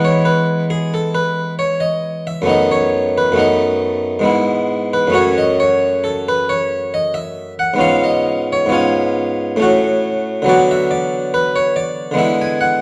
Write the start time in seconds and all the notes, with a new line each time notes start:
Already playing: E3 G#3 B3 E4
0.04 C#5
0.25 B4
0.70 G#4
0.94 A4
1.14 B4
1.59 C#5
1.80 D#5
2.27 E5
2.42 F#2 A3 B3
2.47 D#4 D#5
2.72 C#5
3.18 B4
3.32 F#2 A3 B3
3.38 D#4 D#5
4.19 G#2 G#3 B3
4.25 E4
4.94 B4
5.07 F#2 A3
5.12 C#4 F#4 C#5
5.38 D#5
5.60 C#5
6.04 A4
6.29 B4
6.50 C#5
6.94 D#5
7.14 E5
7.59 F#5
7.74 G#2 B3
7.78 C#4 F4 F5
8.04 D#5
8.53 C#5
8.66 G#2 B3
8.71 C#4 F4 G#5
9.56 A2 A3 C#4
9.62 F#4
10.42 D3 F#3 B3
10.48 F#4 D5
10.71 E5
10.91 D5
11.34 B4
11.56 C#5
11.76 D5
12.11 D3 G#3 B3
12.17 E4 E5
12.41 G#5
12.61 F#5